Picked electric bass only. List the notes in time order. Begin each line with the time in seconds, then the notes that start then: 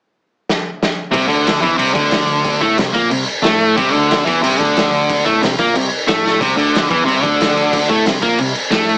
1.14 C2
1.29 D2
1.63 E2
1.78 C2
1.96 D2
2.61 A2
2.77 C2
2.95 A#2
3.11 C2
3.44 A2
3.78 C2
3.93 D2
4.27 E2
4.43 C2
4.61 D2
5.26 A2
5.42 C2
5.59 A#2
5.74 C2
6.08 A2
6.41 C2
6.56 D2
6.91 E2
7.06 C2
7.24 D2
7.90 A2
8.06 C2
8.23 A#2
8.39 C2
8.72 A2